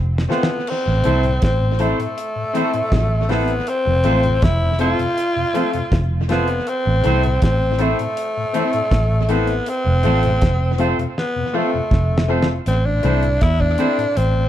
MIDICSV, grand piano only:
0, 0, Header, 1, 2, 480
1, 0, Start_track
1, 0, Key_signature, 0, "minor"
1, 0, Tempo, 749813
1, 428, Time_signature, 4, 2, 24, 8
1, 9275, End_track
2, 0, Start_track
2, 0, Title_t, "Grand piano"
2, 0, Program_c, 0, 0
2, 182, Note_on_c, 0, 57, 88
2, 184, Note_on_c, 0, 60, 80
2, 187, Note_on_c, 0, 65, 74
2, 190, Note_on_c, 0, 69, 102
2, 299, Note_off_c, 0, 69, 0
2, 300, Note_off_c, 0, 65, 0
2, 309, Note_on_c, 0, 65, 24
2, 309, Note_on_c, 0, 69, 27
2, 324, Note_off_c, 0, 57, 0
2, 325, Note_off_c, 0, 60, 0
2, 357, Note_off_c, 0, 65, 0
2, 357, Note_off_c, 0, 69, 0
2, 663, Note_on_c, 0, 57, 83
2, 665, Note_on_c, 0, 60, 76
2, 669, Note_on_c, 0, 64, 79
2, 671, Note_on_c, 0, 69, 94
2, 804, Note_off_c, 0, 57, 0
2, 805, Note_off_c, 0, 60, 0
2, 807, Note_off_c, 0, 64, 0
2, 808, Note_off_c, 0, 69, 0
2, 1142, Note_on_c, 0, 57, 89
2, 1145, Note_on_c, 0, 60, 72
2, 1147, Note_on_c, 0, 64, 74
2, 1150, Note_on_c, 0, 69, 97
2, 1284, Note_off_c, 0, 57, 0
2, 1285, Note_off_c, 0, 60, 0
2, 1286, Note_off_c, 0, 64, 0
2, 1288, Note_off_c, 0, 69, 0
2, 1621, Note_on_c, 0, 57, 89
2, 1624, Note_on_c, 0, 60, 84
2, 1626, Note_on_c, 0, 64, 78
2, 1629, Note_on_c, 0, 69, 99
2, 1763, Note_off_c, 0, 57, 0
2, 1765, Note_off_c, 0, 60, 0
2, 1766, Note_off_c, 0, 64, 0
2, 1767, Note_off_c, 0, 69, 0
2, 2102, Note_on_c, 0, 57, 90
2, 2104, Note_on_c, 0, 60, 86
2, 2107, Note_on_c, 0, 64, 87
2, 2109, Note_on_c, 0, 69, 104
2, 2244, Note_off_c, 0, 57, 0
2, 2245, Note_off_c, 0, 60, 0
2, 2246, Note_off_c, 0, 64, 0
2, 2247, Note_off_c, 0, 69, 0
2, 2584, Note_on_c, 0, 57, 89
2, 2587, Note_on_c, 0, 60, 80
2, 2588, Note_on_c, 0, 65, 81
2, 2590, Note_on_c, 0, 69, 105
2, 2725, Note_off_c, 0, 57, 0
2, 2726, Note_off_c, 0, 60, 0
2, 2727, Note_off_c, 0, 65, 0
2, 2728, Note_off_c, 0, 69, 0
2, 3063, Note_on_c, 0, 57, 79
2, 3067, Note_on_c, 0, 60, 75
2, 3068, Note_on_c, 0, 65, 76
2, 3072, Note_on_c, 0, 69, 95
2, 3204, Note_off_c, 0, 57, 0
2, 3206, Note_off_c, 0, 60, 0
2, 3207, Note_off_c, 0, 65, 0
2, 3209, Note_off_c, 0, 69, 0
2, 3542, Note_on_c, 0, 57, 92
2, 3545, Note_on_c, 0, 60, 80
2, 3547, Note_on_c, 0, 65, 86
2, 3549, Note_on_c, 0, 69, 103
2, 3684, Note_off_c, 0, 57, 0
2, 3685, Note_off_c, 0, 60, 0
2, 3686, Note_off_c, 0, 65, 0
2, 3687, Note_off_c, 0, 69, 0
2, 4022, Note_on_c, 0, 57, 91
2, 4025, Note_on_c, 0, 60, 83
2, 4028, Note_on_c, 0, 65, 88
2, 4030, Note_on_c, 0, 69, 96
2, 4136, Note_off_c, 0, 65, 0
2, 4136, Note_off_c, 0, 69, 0
2, 4145, Note_on_c, 0, 65, 25
2, 4146, Note_on_c, 0, 69, 28
2, 4163, Note_off_c, 0, 57, 0
2, 4165, Note_off_c, 0, 60, 0
2, 4195, Note_off_c, 0, 65, 0
2, 4195, Note_off_c, 0, 69, 0
2, 4503, Note_on_c, 0, 57, 93
2, 4505, Note_on_c, 0, 60, 78
2, 4507, Note_on_c, 0, 64, 80
2, 4509, Note_on_c, 0, 69, 91
2, 4644, Note_off_c, 0, 57, 0
2, 4645, Note_off_c, 0, 60, 0
2, 4646, Note_off_c, 0, 64, 0
2, 4647, Note_off_c, 0, 69, 0
2, 4981, Note_on_c, 0, 57, 86
2, 4983, Note_on_c, 0, 60, 74
2, 4987, Note_on_c, 0, 64, 79
2, 4989, Note_on_c, 0, 69, 88
2, 5123, Note_off_c, 0, 57, 0
2, 5124, Note_off_c, 0, 60, 0
2, 5126, Note_off_c, 0, 64, 0
2, 5127, Note_off_c, 0, 69, 0
2, 5461, Note_on_c, 0, 57, 94
2, 5464, Note_on_c, 0, 60, 82
2, 5467, Note_on_c, 0, 64, 90
2, 5469, Note_on_c, 0, 69, 95
2, 5603, Note_off_c, 0, 57, 0
2, 5604, Note_off_c, 0, 60, 0
2, 5606, Note_off_c, 0, 64, 0
2, 5607, Note_off_c, 0, 69, 0
2, 5942, Note_on_c, 0, 57, 96
2, 5944, Note_on_c, 0, 60, 81
2, 5947, Note_on_c, 0, 64, 86
2, 5949, Note_on_c, 0, 69, 108
2, 6083, Note_off_c, 0, 57, 0
2, 6084, Note_off_c, 0, 60, 0
2, 6086, Note_off_c, 0, 64, 0
2, 6087, Note_off_c, 0, 69, 0
2, 6421, Note_on_c, 0, 57, 86
2, 6425, Note_on_c, 0, 60, 80
2, 6428, Note_on_c, 0, 65, 80
2, 6430, Note_on_c, 0, 69, 90
2, 6563, Note_off_c, 0, 57, 0
2, 6565, Note_off_c, 0, 60, 0
2, 6566, Note_off_c, 0, 65, 0
2, 6567, Note_off_c, 0, 69, 0
2, 6901, Note_on_c, 0, 57, 87
2, 6903, Note_on_c, 0, 60, 75
2, 6907, Note_on_c, 0, 65, 79
2, 6909, Note_on_c, 0, 69, 86
2, 7043, Note_off_c, 0, 57, 0
2, 7044, Note_off_c, 0, 60, 0
2, 7046, Note_off_c, 0, 65, 0
2, 7047, Note_off_c, 0, 69, 0
2, 7382, Note_on_c, 0, 57, 92
2, 7382, Note_on_c, 0, 60, 78
2, 7387, Note_on_c, 0, 65, 86
2, 7388, Note_on_c, 0, 69, 102
2, 7523, Note_off_c, 0, 57, 0
2, 7523, Note_off_c, 0, 60, 0
2, 7525, Note_off_c, 0, 65, 0
2, 7526, Note_off_c, 0, 69, 0
2, 7862, Note_on_c, 0, 57, 92
2, 7864, Note_on_c, 0, 60, 87
2, 7866, Note_on_c, 0, 65, 84
2, 7869, Note_on_c, 0, 69, 99
2, 7977, Note_off_c, 0, 65, 0
2, 7977, Note_off_c, 0, 69, 0
2, 7987, Note_on_c, 0, 65, 26
2, 7987, Note_on_c, 0, 69, 27
2, 8003, Note_off_c, 0, 57, 0
2, 8004, Note_off_c, 0, 60, 0
2, 8035, Note_off_c, 0, 65, 0
2, 8035, Note_off_c, 0, 69, 0
2, 8340, Note_on_c, 0, 57, 91
2, 8342, Note_on_c, 0, 60, 80
2, 8344, Note_on_c, 0, 64, 84
2, 8348, Note_on_c, 0, 69, 94
2, 8482, Note_off_c, 0, 57, 0
2, 8483, Note_off_c, 0, 60, 0
2, 8484, Note_off_c, 0, 64, 0
2, 8486, Note_off_c, 0, 69, 0
2, 8822, Note_on_c, 0, 57, 77
2, 8825, Note_on_c, 0, 60, 78
2, 8827, Note_on_c, 0, 64, 78
2, 8830, Note_on_c, 0, 69, 85
2, 8962, Note_off_c, 0, 57, 0
2, 8964, Note_off_c, 0, 60, 0
2, 8965, Note_off_c, 0, 64, 0
2, 8967, Note_off_c, 0, 69, 0
2, 9275, End_track
0, 0, End_of_file